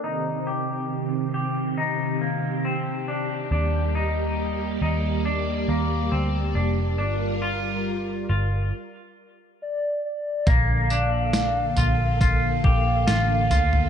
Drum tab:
TB |----------------|----------------|----------------|x-x-x-x-x---x-x-|
SD |----------------|----------------|----------------|----o-------o---|
FT |----------------|----------------|----------------|o-----o-o-----oo|
BD |----------------|----------------|----------------|o-------o-o-----|